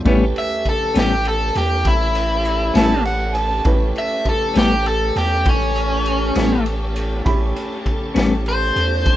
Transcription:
0.05 A1 A2 G3 A3 B3 C#4 E4 G4 A4 B4, kick, ride
0.36 E5, ride
0.65 A4, kick, ride
0.94 A1 A2 G3 B3 C#4, snare, ride
0.99 G4
1.25 A4, ride
1.55 E2 G4, snare, ride
1.85 A1 E4, kick, ride
2.15 ride
2.45 ride
2.74 A1 A2 G3 B3 C#4 A5, snare, ride
3.05 F#5, ride
3.35 A5, ride
3.64 A1 A3 C#4 E4 G4 B4, kick, ride
3.96 E5, ride
4.25 A4, kick, ride
4.54 A1 A2 G3 B3 C#4, snare, ride
4.58 G4
4.86 A4, ride
5.16 E2 G4, snare, ride
5.46 A1 C#4, kick, ride
5.76 ride
6.06 ride
6.35 A1 A2 G3 B3 C#4, snare, ride
6.66 ride
6.96 ride
7.24 A1 A3 C#4 E4 G4 A4 B5, kick, ride
7.56 ride
7.86 kick, ride
8.14 A1 A2 G3 B3 C#4, snare, ride
8.46 C5, ride
8.76 E2, ride
9.06 A1, kick, ride

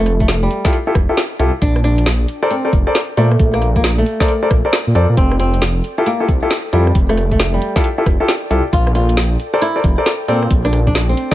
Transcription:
Already playing: F1 A4 D5 G5
0.00 A3
0.06 cross-stick, open hi-hat
0.20 A3, kick, open hi-hat
0.28 snare, closed hi-hat
0.43 G3
0.51 open hi-hat
0.65 E4 F4 G4 A4, kick, snare
0.73 closed hi-hat
0.87 E4 F4 G4 A4
0.95 F1, kick, cross-stick, open hi-hat
1.09 E4 F4 G4 A4
1.17 snare, closed hi-hat
1.39 C2 E4 F4 G4 A4, open hi-hat
1.62 A#1 D4, kick, closed hi-hat
1.76 cross-stick
1.84 D4, cross-stick, open hi-hat
1.98 closed hi-hat
2.06 snare, closed hi-hat
2.28 open hi-hat
2.42 A4 A#4 C5 D5
2.51 C4, closed hi-hat
2.65 A4 A#4 C5 D5
2.73 F1, kick, open hi-hat
2.87 A4 A#4 C5 D5
2.95 snare, closed hi-hat
3.17 A#2 A3 A4 A#4 C5 D5, open hi-hat
3.31 cross-stick
3.40 A#1, kick, closed hi-hat
3.54 A#3, cross-stick, closed hi-hat
3.62 cross-stick, open hi-hat
3.76 A#3, kick, open hi-hat
3.84 snare, closed hi-hat
3.98 A3
4.06 open hi-hat
4.20 A4 A#4 C5 D5, kick, snare
4.28 closed hi-hat
4.43 A4 A#4 C5 D5
4.51 A#1, kick, cross-stick, open hi-hat
4.65 A4 A#4 C5 D5
4.73 snare, closed hi-hat
4.87 A#2
4.95 F2 A4 A#4 C5 D5, open hi-hat
5.09 A#2
5.17 F1 C4, kick, closed hi-hat
5.31 cross-stick
5.39 C4, cross-stick, open hi-hat
5.54 closed hi-hat
5.62 snare, closed hi-hat
5.84 open hi-hat
5.98 E4 F4 G4 A4
6.06 A#3, closed hi-hat
6.20 E4 F4 G4 A4
6.28 C2, kick, open hi-hat
6.43 E4 F4 G4 A4
6.51 snare, closed hi-hat
6.73 F2 G3 E4 F4 G4 A4, open hi-hat
6.87 cross-stick
6.95 F1, kick, closed hi-hat
7.09 A3, cross-stick, closed hi-hat
7.17 cross-stick, open hi-hat
7.31 A3, kick, open hi-hat
7.40 snare, closed hi-hat
7.54 G3
7.62 open hi-hat
7.76 E4 F4 G4 A4, kick, snare
7.84 closed hi-hat
7.98 E4 F4 G4 A4
8.06 F1, kick, cross-stick, open hi-hat
8.20 E4 F4 G4 A4
8.28 snare, closed hi-hat
8.51 C2 E4 F4 G4 A4, open hi-hat
8.73 A#1 F4, kick, closed hi-hat
8.87 cross-stick
8.95 F4, cross-stick, open hi-hat
9.09 closed hi-hat
9.17 snare, closed hi-hat
9.39 open hi-hat
9.54 A4 A#4 C5 D5
9.62 E4, closed hi-hat
9.76 A4 A#4 C5 D5
9.84 F1, kick, open hi-hat
9.98 A4 A#4 C5 D5
10.06 snare, closed hi-hat
10.28 A#2 C4 A4 A#4 C5 D5, open hi-hat
10.42 cross-stick
10.51 A#1, kick, closed hi-hat
10.65 D4, cross-stick, closed hi-hat
10.73 cross-stick, open hi-hat
10.87 D4, kick, open hi-hat
10.95 snare, closed hi-hat
11.09 C4
11.17 open hi-hat

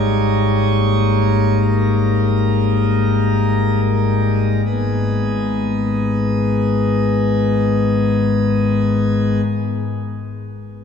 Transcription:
Already playing: G#1 G#2 G3 A#3 D#4 C#5
1.62 A#4
4.65 G#1 G#2 D#3 B3 D#4 G#4

